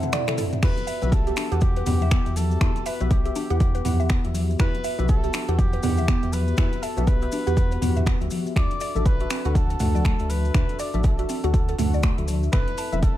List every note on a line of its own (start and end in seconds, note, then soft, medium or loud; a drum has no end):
0.00 0.24 C4 medium
0.00 0.24 E4 medium
0.00 0.24 A4 medium
0.00 0.24 F#5 loud
0.00 closed hi-hat soft
0.00 mid tom medium
0.00 swell medium
0.00 maracas soft
0.12 0.26 D5 loud
0.12 finger snap medium
0.12 closed hi-hat medium
0.12 mid tom medium
0.12 maracas medium
0.27 0.60 C4 medium
0.27 0.60 E4 medium
0.27 0.60 A4 medium
0.27 0.33 A4 medium
0.27 0.60 E5 medium
0.27 finger snap medium
0.27 closed hi-hat soft
0.27 mid tom medium
0.27 maracas soft
0.38 0.51 A4 medium
0.38 mid tom loud
0.38 open hi-hat medium
0.38 maracas medium
0.53 closed hi-hat soft
0.53 mid tom medium
0.53 maracas soft
0.62 0.74 E2 loud
0.62 0.99 B3 medium
0.62 0.77 E4 medium
0.62 0.99 F#4 medium
0.62 0.99 G4 medium
0.62 1.14 B4 loud
0.62 0.99 E5 medium
0.62 finger snap medium
0.62 kick loud
0.62 closed hi-hat medium
0.62 mid tom medium
0.62 crash medium
0.62 maracas medium
0.77 closed hi-hat soft
0.77 muted conga medium
0.77 maracas soft
0.87 1.01 E5 loud
0.87 open hi-hat medium
0.87 maracas medium
1.02 1.33 B1 medium
1.02 1.23 B3 loud
1.02 1.23 F#4 medium
1.02 1.24 G4 medium
1.02 1.12 B4 medium
1.02 1.23 E5 loud
1.02 closed hi-hat soft
1.02 high conga loud
1.02 low conga medium
1.02 maracas soft
1.12 1.63 A4 loud
1.12 kick loud
1.12 closed hi-hat medium
1.12 maracas soft
1.27 1.48 B3 medium
1.27 1.48 F#4 medium
1.27 1.48 G4 medium
1.27 1.32 G4 medium
1.27 1.48 E5 medium
1.27 closed hi-hat soft
1.27 maracas soft
1.36 1.51 D4 medium
1.36 finger snap medium
1.36 open hi-hat medium
1.36 muted conga medium
1.36 maracas medium
1.51 1.83 E2 medium
1.51 1.84 B3 medium
1.51 1.84 F#4 medium
1.51 1.84 G4 medium
1.51 1.57 G4 loud
1.51 1.84 F#5 loud
1.51 closed hi-hat soft
1.51 maracas soft
1.61 2.38 G4 loud
1.61 kick loud
1.61 closed hi-hat medium
1.61 maracas medium
1.76 1.82 B4 medium
1.76 closed hi-hat soft
1.76 maracas soft
1.86 2.21 E2 loud
1.86 2.23 B3 medium
1.86 2.00 B3 medium
1.86 2.23 E4 medium
1.86 2.23 G4 medium
1.86 2.23 F#5 loud
1.86 mid tom medium
1.86 open hi-hat medium
1.86 high conga medium
1.86 low conga loud
1.86 maracas loud
2.01 2.11 E5 medium
2.01 muted conga medium
2.01 high conga medium
2.01 maracas soft
2.11 2.25 B3 medium
2.11 finger snap medium
2.11 kick loud
2.11 closed hi-hat medium
2.11 maracas medium
2.26 2.57 E2 medium
2.26 2.59 B3 medium
2.26 2.59 F#4 medium
2.26 2.59 G4 medium
2.26 2.59 E5 medium
2.26 closed hi-hat soft
2.26 muted conga soft
2.26 maracas soft
2.36 2.86 A4 loud
2.36 open hi-hat medium
2.36 high conga loud
2.36 maracas loud
2.50 muted conga medium
2.50 maracas soft
2.61 2.72 E2 loud
2.61 2.97 B3 medium
2.61 2.75 E4 medium
2.61 2.97 F#4 medium
2.61 2.97 G4 medium
2.61 2.97 E5 medium
2.61 finger snap medium
2.61 kick loud
2.61 closed hi-hat medium
2.61 mid tom medium
2.61 maracas medium
2.76 closed hi-hat soft
2.76 muted conga medium
2.76 maracas soft
2.86 3.09 B4 loud
2.86 2.99 E5 loud
2.86 open hi-hat medium
2.86 maracas loud
3.00 3.32 B1 medium
3.00 3.22 B3 loud
3.00 3.22 F#4 medium
3.00 3.22 G4 medium
3.00 3.10 B4 medium
3.00 3.22 E5 loud
3.00 closed hi-hat soft
3.00 high conga medium
3.00 maracas soft
3.11 4.31 G4 medium
3.11 kick loud
3.11 closed hi-hat medium
3.11 maracas medium
3.25 3.47 B3 medium
3.25 3.47 F#4 medium
3.25 3.31 G4 medium
3.25 3.47 G4 medium
3.25 3.47 E5 medium
3.25 closed hi-hat soft
3.25 maracas soft
3.35 3.50 D4 medium
3.35 open hi-hat medium
3.35 muted conga medium
3.35 maracas loud
3.50 3.81 E2 medium
3.50 3.83 B3 loud
3.50 3.83 E4 medium
3.50 3.56 G4 loud
3.50 3.83 G4 medium
3.50 3.83 F#5 loud
3.50 closed hi-hat soft
3.50 maracas soft
3.60 kick loud
3.60 closed hi-hat medium
3.60 maracas medium
3.75 3.80 B4 medium
3.75 closed hi-hat soft
3.75 maracas soft
3.85 4.19 E2 loud
3.85 3.98 B3 medium
3.85 4.21 B3 medium
3.85 4.21 E4 medium
3.85 4.21 G4 medium
3.85 4.21 F#5 loud
3.85 mid tom medium
3.85 open hi-hat medium
3.85 high conga medium
3.85 maracas medium
4.00 4.09 E5 medium
4.00 muted conga medium
4.00 maracas soft
4.09 4.23 B3 medium
4.09 finger snap loud
4.09 kick loud
4.09 closed hi-hat medium
4.09 maracas medium
4.24 4.56 E2 medium
4.24 4.57 B3 medium
4.24 4.57 F#4 medium
4.24 4.57 G4 medium
4.24 4.57 E5 medium
4.24 closed hi-hat soft
4.24 muted conga soft
4.24 high conga medium
4.24 maracas soft
4.34 open hi-hat medium
4.34 high conga loud
4.34 maracas loud
4.50 muted conga medium
4.50 maracas soft
4.59 4.71 E2 loud
4.59 4.95 B3 medium
4.59 4.73 E4 medium
4.59 4.95 F#4 medium
4.59 4.95 G4 medium
4.59 5.06 B4 loud
4.59 4.95 E5 medium
4.59 finger snap medium
4.59 kick loud
4.59 closed hi-hat medium
4.59 mid tom medium
4.59 maracas medium
4.74 closed hi-hat soft
4.74 muted conga medium
4.74 maracas soft
4.84 4.98 E5 loud
4.84 open hi-hat medium
4.84 maracas medium
4.98 5.30 B1 medium
4.98 5.20 B3 loud
4.98 5.20 F#4 loud
4.98 5.20 G4 loud
4.98 5.08 B4 medium
4.98 5.20 E5 loud
4.98 closed hi-hat soft
4.98 high conga loud
4.98 low conga medium
4.98 maracas soft
5.08 5.61 A4 loud
5.08 kick loud
5.08 closed hi-hat medium
5.08 maracas medium
5.23 5.45 B3 medium
5.23 5.45 F#4 medium
5.23 5.29 G4 medium
5.23 5.45 G4 medium
5.23 5.45 E5 medium
5.23 closed hi-hat soft
5.23 maracas soft
5.33 5.48 D4 medium
5.33 finger snap loud
5.33 open hi-hat medium
5.33 muted conga medium
5.33 maracas loud
5.48 5.79 E2 loud
5.48 5.81 B3 loud
5.48 5.81 F#4 medium
5.48 5.81 G4 medium
5.48 5.54 G4 loud
5.48 5.81 F#5 loud
5.48 closed hi-hat soft
5.48 maracas soft
5.58 6.34 G4 loud
5.58 kick loud
5.58 closed hi-hat medium
5.58 muted conga soft
5.58 high conga medium
5.58 maracas medium
5.73 5.79 B4 medium
5.73 closed hi-hat soft
5.73 maracas soft
5.83 6.17 E2 loud
5.83 6.19 B3 medium
5.83 5.97 B3 medium
5.83 6.19 E4 medium
5.83 6.19 G4 medium
5.83 6.19 F#5 loud
5.83 mid tom medium
5.83 open hi-hat medium
5.83 high conga medium
5.83 low conga loud
5.83 maracas medium
5.97 6.08 E5 medium
5.97 muted conga medium
5.97 high conga loud
5.97 maracas soft
6.08 6.22 B3 medium
6.08 finger snap loud
6.08 kick loud
6.08 closed hi-hat medium
6.08 maracas medium
6.23 6.54 E2 medium
6.23 6.55 B3 medium
6.23 6.55 F#4 medium
6.23 6.55 G4 medium
6.23 6.55 E5 medium
6.23 closed hi-hat soft
6.23 muted conga soft
6.23 maracas soft
6.33 6.84 B4 loud
6.33 open hi-hat medium
6.33 high conga loud
6.33 maracas loud
6.47 muted conga medium
6.47 maracas soft
6.57 6.69 E2 loud
6.57 6.94 B3 medium
6.57 6.72 E4 medium
6.57 6.94 F#4 medium
6.57 6.94 G4 medium
6.57 6.94 E5 medium
6.57 finger snap medium
6.57 kick loud
6.57 closed hi-hat medium
6.57 mid tom medium
6.57 maracas medium
6.72 closed hi-hat soft
6.72 muted conga soft
6.72 maracas soft
6.83 7.09 A4 loud
6.83 6.96 E5 loud
6.83 open hi-hat medium
6.83 maracas medium
6.96 7.28 B1 medium
6.96 7.18 B3 loud
6.96 7.18 F#4 medium
6.96 7.18 G4 medium
6.96 7.07 B4 medium
6.96 7.19 E5 loud
6.96 closed hi-hat soft
6.96 high conga medium
6.96 low conga medium
6.96 maracas soft
7.07 8.31 B4 loud
7.07 kick loud
7.07 closed hi-hat medium
7.07 maracas medium
7.22 7.43 B3 medium
7.22 7.43 F#4 medium
7.22 7.43 G4 medium
7.22 7.28 G4 medium
7.22 7.43 E5 medium
7.22 closed hi-hat soft
7.22 maracas soft
7.32 7.46 D4 medium
7.32 open hi-hat medium
7.32 muted conga medium
7.32 maracas loud
7.47 7.78 E2 loud
7.47 7.79 B3 medium
7.47 7.79 F#4 medium
7.47 7.79 G4 medium
7.47 7.52 G4 loud
7.47 7.79 F#5 loud
7.47 closed hi-hat soft
7.47 maracas soft
7.57 kick loud
7.57 closed hi-hat medium
7.57 muted conga soft
7.57 maracas medium
7.71 7.77 B4 medium
7.71 closed hi-hat soft
7.71 maracas soft
7.81 8.16 E2 loud
7.81 8.18 B3 medium
7.81 7.95 B3 medium
7.81 8.18 F#4 medium
7.81 8.18 G4 medium
7.81 8.18 F#5 loud
7.81 mid tom medium
7.81 open hi-hat medium
7.81 high conga medium
7.81 maracas medium
7.96 8.06 E5 medium
7.96 closed hi-hat soft
7.96 mid tom medium
7.96 muted conga medium
7.96 maracas soft
8.06 8.20 B3 medium
8.06 finger snap loud
8.06 kick loud
8.06 closed hi-hat medium
8.06 maracas medium
8.21 8.29 D2 medium
8.21 8.54 B3 medium
8.21 8.54 F#4 medium
8.21 8.54 G4 medium
8.21 8.54 E5 medium
8.21 closed hi-hat soft
8.21 muted conga soft
8.21 high conga medium
8.21 maracas soft
8.30 open hi-hat medium
8.30 high conga loud
8.30 maracas loud
8.46 muted conga medium
8.46 maracas soft
8.56 8.67 D2 loud
8.56 8.92 D4 medium
8.56 8.70 D4 medium
8.56 8.92 F#4 medium
8.56 8.92 A4 medium
8.56 9.02 D5 loud
8.56 8.92 E5 medium
8.56 finger snap medium
8.56 kick loud
8.56 closed hi-hat medium
8.56 mid tom medium
8.56 maracas soft
8.71 closed hi-hat soft
8.71 muted conga medium
8.71 maracas soft
8.80 8.94 D5 loud
8.80 open hi-hat medium
8.80 maracas loud
8.95 9.26 A1 medium
8.95 9.17 D4 loud
8.95 9.17 F#4 medium
8.95 9.17 A4 medium
8.95 9.05 A4 medium
8.95 9.17 E5 loud
8.95 closed hi-hat soft
8.95 high conga medium
8.95 low conga medium
8.95 maracas soft
9.05 9.56 B4 loud
9.05 kick loud
9.05 closed hi-hat medium
9.05 muted conga soft
9.05 maracas soft
9.20 9.42 D4 medium
9.20 9.26 F#4 medium
9.20 9.42 F#4 medium
9.20 9.42 A4 medium
9.20 9.42 E5 loud
9.20 closed hi-hat soft
9.20 maracas soft
9.30 9.45 C4 medium
9.30 finger snap medium
9.30 open hi-hat medium
9.30 muted conga soft
9.30 maracas loud
9.45 9.76 D2 medium
9.45 9.78 D4 medium
9.45 9.78 F#4 medium
9.45 9.51 F#4 loud
9.45 9.78 A4 medium
9.45 9.78 F#5 loud
9.45 closed hi-hat soft
9.45 maracas soft
9.55 10.31 A4 loud
9.55 kick loud
9.55 closed hi-hat medium
9.55 muted conga soft
9.55 high conga medium
9.55 maracas soft
9.70 9.75 A4 medium
9.70 closed hi-hat soft
9.70 maracas soft
9.80 10.14 D2 loud
9.80 9.93 A3 medium
9.80 10.16 D4 medium
9.80 10.16 F#4 medium
9.80 10.16 A4 medium
9.80 10.16 F#5 loud
9.80 mid tom medium
9.80 open hi-hat medium
9.80 high conga medium
9.80 low conga medium
9.80 maracas medium
9.94 10.04 D5 medium
9.94 muted conga medium
9.94 high conga loud
9.94 maracas soft
10.05 10.18 A3 medium
10.05 finger snap loud
10.05 kick loud
10.05 closed hi-hat medium
10.05 maracas medium
10.19 10.51 D2 medium
10.19 10.52 D4 medium
10.19 10.52 F#4 medium
10.19 10.52 A4 medium
10.19 10.52 E5 medium
10.19 closed hi-hat soft
10.19 maracas soft
10.30 10.81 B4 loud
10.30 open hi-hat medium
10.30 high conga loud
10.30 maracas medium
10.45 muted conga medium
10.45 maracas soft
10.54 10.66 D2 loud
10.54 10.90 D4 medium
10.54 10.69 D4 medium
10.54 10.90 F#4 medium
10.54 10.90 A4 medium
10.54 10.90 E5 medium
10.54 finger snap medium
10.54 kick loud
10.54 closed hi-hat medium
10.54 mid tom medium
10.54 maracas medium
10.69 closed hi-hat soft
10.69 muted conga soft
10.69 maracas soft
10.79 11.04 D5 loud
10.79 10.93 D5 loud
10.79 open hi-hat medium
10.79 maracas medium
10.94 11.25 A1 medium
10.94 11.15 D4 loud
10.94 11.15 F#4 medium
10.94 11.15 A4 medium
10.94 11.04 A4 medium
10.94 11.15 E5 loud
10.94 closed hi-hat soft
10.94 high conga medium
10.94 maracas soft
11.03 12.24 A4 medium
11.03 kick loud
11.03 closed hi-hat medium
11.03 muted conga soft
11.03 maracas soft
11.19 11.40 D4 medium
11.19 11.40 F#4 medium
11.19 11.24 F#4 medium
11.19 11.40 A4 medium
11.19 11.40 E5 medium
11.19 closed hi-hat soft
11.19 maracas soft
11.29 11.43 C4 medium
11.29 open hi-hat medium
11.29 muted conga medium
11.29 maracas loud
11.44 11.75 D2 medium
11.44 11.76 D4 medium
11.44 11.76 F#4 medium
11.44 11.49 F#4 loud
11.44 11.76 A4 medium
11.44 11.76 F#5 loud
11.44 closed hi-hat soft
11.44 maracas soft
11.54 kick loud
11.54 closed hi-hat medium
11.54 muted conga soft
11.54 maracas soft
11.69 11.74 A4 medium
11.69 closed hi-hat soft
11.69 maracas soft
11.78 12.12 D2 loud
11.78 11.92 A3 medium
11.78 12.14 D4 medium
11.78 12.14 F#4 medium
11.78 12.14 A4 medium
11.78 12.14 F#5 loud
11.78 mid tom loud
11.78 open hi-hat medium
11.78 high conga medium
11.78 maracas medium
11.93 12.03 D5 medium
11.93 muted conga medium
11.93 maracas soft
12.03 12.17 A3 medium
12.03 finger snap medium
12.03 kick loud
12.03 closed hi-hat medium
12.03 maracas medium
12.18 12.49 D2 medium
12.18 12.50 D4 medium
12.18 12.50 F#4 medium
12.18 12.50 A4 medium
12.18 12.50 E5 medium
12.18 closed hi-hat soft
12.18 muted conga soft
12.18 high conga medium
12.18 maracas soft
12.28 open hi-hat medium
12.28 high conga loud
12.28 maracas medium
12.43 muted conga medium
12.43 maracas soft
12.52 12.64 A1 loud
12.52 12.89 C4 medium
12.52 12.89 E4 medium
12.52 12.89 A4 medium
12.52 12.67 A4 medium
12.52 12.99 B4 loud
12.52 12.89 E5 medium
12.52 finger snap medium
12.52 kick loud
12.52 closed hi-hat medium
12.52 mid tom medium
12.52 maracas soft
12.68 closed hi-hat soft
12.68 muted conga medium
12.68 maracas soft
12.78 12.91 A5 loud
12.78 open hi-hat medium
12.78 maracas medium
12.92 13.18 E1 medium
12.92 13.14 C4 loud
12.92 13.14 E4 medium
12.92 13.14 A4 medium
12.92 13.14 E5 loud
12.92 13.02 E5 medium
12.92 closed hi-hat soft
12.92 high conga medium
12.92 low conga medium
12.92 maracas soft
13.02 13.18 A4 loud
13.02 kick loud
13.02 closed hi-hat medium
13.02 muted conga soft
13.02 maracas soft